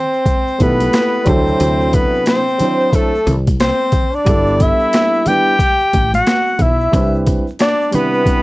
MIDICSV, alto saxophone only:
0, 0, Header, 1, 2, 480
1, 0, Start_track
1, 0, Key_signature, 1, "major"
1, 0, Tempo, 666667
1, 1150, Time_signature, 4, 2, 24, 8
1, 6066, End_track
2, 0, Start_track
2, 0, Title_t, "Alto saxophone"
2, 0, Program_c, 0, 65
2, 0, Note_on_c, 0, 72, 87
2, 451, Note_on_c, 0, 71, 98
2, 462, Note_off_c, 0, 72, 0
2, 926, Note_on_c, 0, 72, 95
2, 937, Note_off_c, 0, 71, 0
2, 1401, Note_on_c, 0, 71, 95
2, 1412, Note_off_c, 0, 72, 0
2, 1635, Note_off_c, 0, 71, 0
2, 1648, Note_on_c, 0, 72, 99
2, 2126, Note_on_c, 0, 69, 102
2, 2137, Note_off_c, 0, 72, 0
2, 2414, Note_off_c, 0, 69, 0
2, 2599, Note_on_c, 0, 72, 98
2, 2988, Note_on_c, 0, 74, 102
2, 2999, Note_off_c, 0, 72, 0
2, 3328, Note_on_c, 0, 76, 116
2, 3338, Note_off_c, 0, 74, 0
2, 3800, Note_on_c, 0, 79, 108
2, 3811, Note_off_c, 0, 76, 0
2, 4423, Note_off_c, 0, 79, 0
2, 4428, Note_on_c, 0, 78, 100
2, 4764, Note_on_c, 0, 76, 99
2, 4775, Note_off_c, 0, 78, 0
2, 5237, Note_off_c, 0, 76, 0
2, 5485, Note_on_c, 0, 74, 119
2, 5722, Note_on_c, 0, 71, 102
2, 5733, Note_off_c, 0, 74, 0
2, 6066, Note_off_c, 0, 71, 0
2, 6066, End_track
0, 0, End_of_file